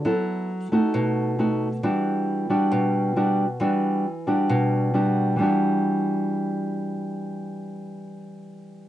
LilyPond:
\new Staff \with { instrumentName = "Nylon-string guitar" } { \time 4/4 \key e \minor \tempo 4 = 135 << { <b e' a'>4 r8 <a dis' fis'>4. <a dis' fis'>8 r8 | <g d' fis'>4. <g d' fis'>4. <g d' fis'>8 r8 | <g d' fis'>4 r8 <g d' fis'>4. <g d' fis'>4 | <e g d' fis'>1~ |
<e g d' fis'>1 | } \\ { fis2 b,2 | e2 b,2 | e2 b,2 | r1 |
r1 | } >> }